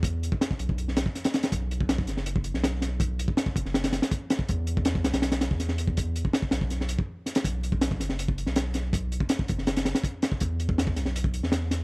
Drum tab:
HH |x-x-x-x-x-x-xxxx|x-x-x-x-x-x-x-x-|x-x-x-x-xxxxx-x-|x-x-x-xxxxx-x-x-|
SD |----o----oo-oooo|----o-oo---oo-o-|----o--ooooo--o-|----o-ooooo-oo--|
BD |o--o-o-o---o----|o--o-o---o------|o--o-oo-----o--o|o--o-o-----o---o|

HH |x-x-x-x-x-x---xx|x-x-x-x-x-x-x-x-|x-x-x-x-xxxxx-x-|x-x-x-x-x-x-x-x-|
SD |----o-o-oo----oo|----o-oo---oo-o-|----o--ooooo--o-|----o-oo---oo-o-|
BD |o--o-o-o---o----|o--o-o---o------|o--o-oo-----o--o|o--o-o---o------|